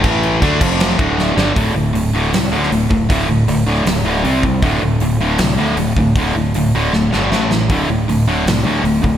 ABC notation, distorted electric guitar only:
X:1
M:4/4
L:1/8
Q:1/4=157
K:Dm
V:1 name="Distorted electric guitar" clef=bass
[A,,E,A,]2 [D,A,D] [F,,C,F,]2 [D,,A,,D,]2 [G,,D,G,] | [K:C] [D,,A,,D,] [D,,A,,] [D,,A,,] [D,,A,,D,] [D,,A,,] [D,,A,,D,] [D,,A,,] [D,,A,,] | [D,,A,,D,] [D,,A,,] [D,,A,,] [D,,A,,D,] [D,,A,,] [D,,A,,D,] [C,G,C] [C,G,] | [D,,A,,D,] [D,,A,,] [D,,A,,] [D,,A,,D,] [D,,A,,] [D,,A,,D,] [D,,A,,] [D,,A,,] |
[D,,A,,D,] [D,,A,,] [D,,A,,] [D,,A,,D,] [D,,A,,] [D,,A,,D,] [A,,E,A,] [A,,E,] | [D,,A,,D,] [D,,A,,] [D,,A,,] [D,,A,,D,] [D,,A,,] [D,,A,,D,] [D,,A,,] [D,,A,,] |]